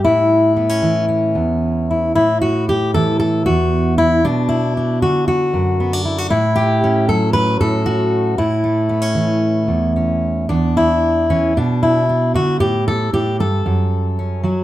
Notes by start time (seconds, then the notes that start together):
Already playing: E4
0.04 A2 E4
0.56 B3
0.69 C#4
0.82 E3
1.08 C#4
1.35 E2
1.91 E4
2.15 A2 E4
2.42 F#4
2.69 G4
2.94 E3 A4
3.20 A4
3.46 E2 F#4
3.98 E4
4.25 B2 D4
4.49 E4
4.77 D4
5.02 D3 F#4
5.28 F#4
5.54 F#2
5.80 B3
5.93 D4
6.05 E4
6.18 F#4
6.30 A2 E4
6.56 G4
6.84 C#4
7.08 F#3 A4
7.33 B4
7.60 A2 A4
7.86 F#4
8.38 A2 E4
8.64 A3
8.89 B3
9.02 C#4
9.15 E3
9.68 E2
9.96 C#4
10.49 E2 D4
10.77 E4
11.30 E3 C#4
11.57 B2 D4
11.83 E4
12.09 D4
12.34 D3 F#4
12.60 A2 G4
12.88 A4
13.13 A2 G4
13.40 G2 A4
13.66 F#2
14.19 C#4
14.43 F#3 F#4